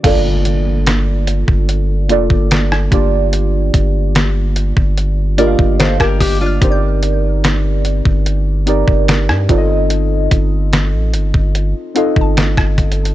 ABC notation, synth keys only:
X:1
M:4/4
L:1/8
Q:1/4=73
K:Bb
V:1 name="Synth keys"
[B,DFAd]3 z2 [B,DFAd]2 [B,DFGd]- | [B,DFGd]2 z3 [B,DFGef]2 z | [CEGBcd]3 z2 [CEGBd]2 [CEFAde]- | [CEFAde]2 z3 [CEFAe]2 z |]